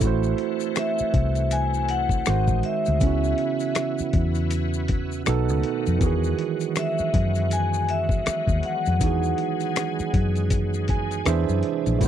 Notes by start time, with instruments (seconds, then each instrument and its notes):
0.00 fingered electric bass A1, tonewheel organ E3 A3 C4 F#4, tine electric piano A3 E4, kick, closed hi-hat, maracas
0.04 tine electric piano F#4 C5
0.23 maracas
0.38 closed hi-hat
0.60 closed hi-hat, maracas
0.76 vibraphone E5, finger snap, cross-stick, closed hi-hat, maracas
0.98 muted fingered electric bass stroke, maracas
1.14 fingered electric bass C2, kick, closed hi-hat
1.35 closed hi-hat, maracas
1.51 vibraphone G#5, closed hi-hat, maracas
1.74 maracas
1.89 vibraphone F#5, closed hi-hat
2.09 kick, maracas
2.26 fingered electric bass G#1, tonewheel organ D#3 G#3, tine electric piano D#3 G#3 F#4, finger snap, cross-stick, closed hi-hat, maracas
2.30 tine electric piano C5
2.48 fingered electric bass A1, kick, maracas
2.63 vibraphone E5, closed hi-hat
2.86 fingered electric bass D2, closed hi-hat, maracas
3.00 fingered electric bass C#2, tine electric piano C#3 B3 C#4, tonewheel organ E3 B3 E4, kick, closed hi-hat, maracas
3.05 tine electric piano E4 F#4
3.24 maracas
3.38 closed hi-hat
3.60 closed hi-hat, maracas
3.75 finger snap, cross-stick, closed hi-hat, maracas
3.98 muted fingered electric bass stroke, maracas
4.13 fingered electric bass E2, kick, closed hi-hat
4.35 closed hi-hat, maracas
4.51 closed hi-hat, maracas
4.74 maracas
4.88 kick, closed hi-hat
5.12 maracas
5.26 fingered electric bass B1, tine electric piano B2 B3 D#4 A4, tonewheel organ D#3 A3 F#4, finger snap, cross-stick, closed hi-hat, maracas
5.49 fingered electric bass C#2, maracas
5.63 closed hi-hat
5.86 fingered electric bass F2, closed hi-hat, maracas
5.99 fingered electric bass E2, tine electric piano D#3 E3, tonewheel organ F#3 G#3 B3, kick, closed hi-hat, maracas
6.04 tine electric piano F#4 G#4
6.24 maracas
6.39 closed hi-hat
6.60 closed hi-hat, maracas
6.76 vibraphone E5, finger snap, cross-stick, closed hi-hat, maracas
6.98 muted fingered electric bass stroke, maracas
7.14 fingered electric bass F#2, kick, closed hi-hat
7.35 closed hi-hat, maracas
7.51 vibraphone G#5, closed hi-hat, maracas
7.74 maracas
7.89 vibraphone E5, closed hi-hat
8.09 kick, maracas
8.26 finger snap, muted fingered electric bass stroke, cross-stick, closed hi-hat, maracas
8.47 fingered electric bass D#2, kick, maracas
8.63 vibraphone F#5, closed hi-hat
8.86 fingered electric bass F2, closed hi-hat, maracas
8.99 fingered electric bass E2, tine electric piano E3 D#4, tonewheel organ G#4, kick, closed hi-hat, maracas
9.03 tine electric piano F#4 G#4
9.23 maracas
9.38 closed hi-hat
9.60 closed hi-hat, maracas
9.76 finger snap, cross-stick, closed hi-hat, maracas
9.99 muted fingered electric bass stroke, maracas
10.14 fingered electric bass F#2, kick, closed hi-hat
10.36 closed hi-hat, maracas
10.50 kick, closed hi-hat, maracas
10.74 maracas
10.88 tine electric piano G#5, kick, closed hi-hat
11.11 closed hi-hat, maracas
11.24 fingered electric bass E2, tonewheel organ C3 G#3 D4 E4, tine electric piano E3 D4 E5, finger snap, cross-stick, closed hi-hat, maracas
11.28 tine electric piano G#4 C5
11.49 fingered electric bass F#2, maracas
11.63 closed hi-hat
11.86 fingered electric bass A#1, closed hi-hat, maracas
11.99 fingered electric bass A1, horn section F#3 A3 C4 F#4, tine electric piano A3 E4, tonewheel organ A3 F#4, kick, closed hi-hat, maracas
12.04 tine electric piano F#4